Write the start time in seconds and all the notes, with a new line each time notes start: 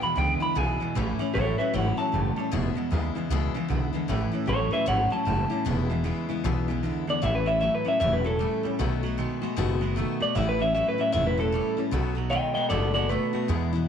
0.01 E2 B2 E3 G#3 B3 E4 B5
0.16 C#2 E2 D3 E3 G#3 B3 E4 G5
0.40 E3 G#3 B3 E4 B5, muted upright bass stroke
0.55 B1 E2 B2 C#3 E3 G#3 B3 E4 G#5
0.80 E2 B2 E3 G#3 B3 E4, muted upright bass stroke
0.95 A1 A2 E3 A3 C#4 E4
1.19 A2 E3 A3 C#4 E4, muted upright bass stroke
1.34 A1 A2 E3 F#3 A3 C#4 E4 A4 C#5
1.58 A2 F#3 A3 C#4 E4 B4 E5
1.73 G#1 A2 E3 F#3 A3 C#4 E4 C#5 F#5
1.97 A2 F#3 A3 C#4 E4 A5, muted upright bass stroke
2.12 F#1 A2 E3 G3 A3 C#4 E4
2.36 A2 G3 A3 C#4 E4, muted upright bass stroke
2.51 E1 E2 B2 E3 G#3 B3 E4
2.75 E2 B2 E3 G#3 B3 E4, muted upright bass stroke
2.90 D#2 E2 C#3 E3 G#3 B3 E4
3.15 E2 C#3 E3 G#3 B3 E4
3.30 C#2 E2 B2 C#3 E3 G#3 B3 E4
3.54 E2 C#3 E3 G#3 B3 E4, muted upright bass stroke
3.68 B1 E2 D3 E3 G#3 B3 E4
3.93 E2 D3 E3 G#3 B3 E4, muted upright bass stroke
4.08 A1 A2 E3 A3 C#4 E4
4.32 A2 E3 A3 C#4 E4, muted upright bass stroke
4.46 A1 A2 E3 F#3 A3 C#4 E4 A4 C#5
4.71 A2 F#3 A3 C#4 E4 B4 E5
4.86 G#1 A2 E3 F#3 A3 C#4 E4 C#5 F#5
5.10 A2 F#3 A3 C#4 E4 A5, muted upright bass stroke
5.25 F#1 A2 E3 G3 A3 C#4 E4
5.50 A2 G3 A3 C#4 E4, muted upright bass stroke
5.65 E1 E2 B2 E3 G#3 B3 E4
5.90 E2 B2 E3 G#3 B3 E4
6.04 E2 C#3 E3 G#3 B3 E4
6.28 E2 C#3 E3 G#3 B3 E4, muted upright bass stroke
6.43 B1 E2 B2 C#3 E3 G#3 B3 E4
6.68 E2 C#3 E3 G#3 B3 E4
6.82 E2 D3 E3 G#3 B3 E4
7.07 E2 D3 E3 G#3 B3 E4 D5, muted upright bass stroke
7.22 A1 A2 E3 A3 C#4 E4 E5
7.35 B4
7.46 A2 E3 A3 C#4 E4 E5
7.61 A2 E3 F#3 A3 C#4 E4 E5
7.75 B4
7.85 A2 F#3 A3 C#4 E4 E5, muted upright bass stroke
8.00 E1 A2 E3 F#3 A3 C#4 E4 E5
8.13 B4
8.24 A2 F#3 A3 C#4 E4 A4
8.39 A2 E3 G3 A3 C#4 E4
8.63 A2 G3 A3 C#4 E4, muted upright bass stroke
8.79 B1 B2 D#3 F#3 A3 B3 F#4
9.03 B2 F#3 A3 B3 F#4
9.18 B2 D#3 G#3 A3 B3 F#4
9.42 B2 G#3 A3 B3 F#4, muted upright bass stroke
9.56 F#1 B2 D#3 G#3 A3 B3 F#4
9.81 B2 G#3 A3 B3 F#4
9.96 B2 D#3 A3 B3 F#4
10.20 B2 A3 B3 F#4 D5, muted upright bass stroke
10.35 A1 A2 E3 A3 C#4 E4 E5
10.49 B4
10.59 A2 E3 A3 C#4 E4 E5
10.74 A2 E3 F#3 A3 C#4 E4 E5
10.88 B4
10.98 A2 F#3 A3 C#4 E4 E5, muted upright bass stroke
11.12 E1 A2 E3 F#3 A3 C#4 E4 E5
11.27 B4
11.37 A2 F#3 A3 C#4 E4 A4
11.52 A2 E3 G3 A3 C#4 E4
11.77 A2 G3 A3 C#4 E4, muted upright bass stroke
11.91 B1 B2 D#3 F#3 A3 B3 F#4
12.15 B2 F#3 A3 B3 F#4
12.30 B2 D#3 G#3 A3 B3 F#4 D#5 G5
12.54 B2 G#3 A3 B3 F#4 D#5 G5, muted upright bass stroke
12.69 F#1 B2 D#3 G#3 A3 B3 F#4 A4 D5
12.94 B2 G#3 A3 B3 F#4 A4 D5
13.09 B2 D#3 A3 B3 F#4 B4
13.33 B2 A3 B3 F#4, muted upright bass stroke
13.48 E2 B2 E3 G#3 B3 E4
13.73 E3 G#3 B3 E4